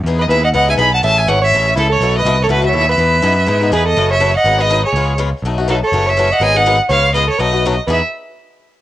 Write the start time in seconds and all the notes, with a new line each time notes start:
0.03 E2 E3 B3 G#4
0.08 D#4
0.19 B4 D#5
0.28 D#2 E3 B3 D#4 G#4 B4 E5
0.44 D#5 F#5
0.53 C#2 E3 B3 D#4 G#4 D#5 F#5
0.68 B3 D#4 G#4 E5 G#5
0.77 B1 E3 B3 D#4 G#4 G#5 B5
0.94 F#5 A5
1.03 A1 C#3 E3 A3 C#4 G#4 E5 A5
1.18 E5 G#5
1.27 G#1 C#3 E3 A3 C#4 G#4 C#5 F#5
1.42 C#5 E5
1.51 A1 C#3 E3 A3 C#4 G#4
1.67 A3 C#4 G#4
1.76 C#2 C#3 E3 A3 C#4 E4 G#4 A4
1.90 A4 C#5
1.99 B1 B2 E3 A3 E4 F#4
2.18 B4 D#5
2.24 C2 B2 E3 A3 E4 F#4
2.43 A4 C#5
2.48 C#2 B2 E3 A3 E4 F#4 B4
2.62 A3 E4 F#4 E5
2.69 C#5
2.73 D#2 B2 E3 A3 E4 F#4
2.89 B4 E5
2.97 E2 E3 B3 D#4 G#4
3.22 F#2 E3 B3 D#4 G#4
3.47 G#2 E3 B3 D#4 G#4
3.61 B3 D#4 G#4
3.72 E2 E3 B3 D#4 G#4 B4
3.85 A4 D#5
3.95 F#1 C#3 E3 A3 C#4 F#4
4.10 C#5 E5
4.20 C#3 E3 A3 C#4 F#4
4.36 D#5 F#5
4.44 G#1 D#3 F#3 B3 D#4 G#4
4.59 B3 D#4 G#4 B4 D#5
4.70 D#3 F#3 B3 D#4 G#4
4.85 G#4 C#5
4.93 C#2 C#3 G#3 B3
4.97 F4 G#4
5.18 C#3 G#3 B3 F4 G#4
5.42 B1 B2 F#3 A3 D#4 F#4
5.58 A3 D#4 F#4
5.68 B2 F#3 A3 D#4 F#4 A4
5.83 A4 C#5
5.92 F#1 C#3 E3 A3 C#4 F#4
6.07 C#5 E5
6.17 C#3 E3 A3 C#4 F#4
6.32 D#5 F#5
6.40 G#1 D#3 F#3 B3 D#4 G#4 D#5 G#5
6.54 B3 D#4 G#4 D#5 F#5
6.66 D#3 F#3 B3 D#4 G#4
6.89 C#2 C#3 G#3 B3 F4 G#4 C#5 F5
7.14 C#3 G#3 B3 F4 G#4 B4 D#5
7.27 A4 C#5
7.38 B1 B2 F#3 A3 D#4 F#4 B4 D#5
7.53 A3 D#4 F#4
7.66 B2 F#3 A3 D#4 F#4
7.87 E2 E3 B3 D#4 G#4 B4
7.92 E5